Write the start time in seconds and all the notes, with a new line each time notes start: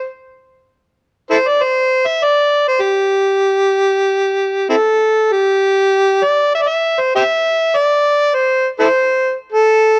1.30 E4 A4 C5
1.48 D5
1.63 C5
2.06 E5
2.24 D5
2.68 C5
2.81 G4
4.69 C4 E4 A4
5.32 G4
6.24 D5
6.55 E5
6.62 D5
6.68 E5
6.99 C5
7.16 G4 C5 E5
7.77 D5
8.34 C5
8.79 E4 A4 C5
9.52 A4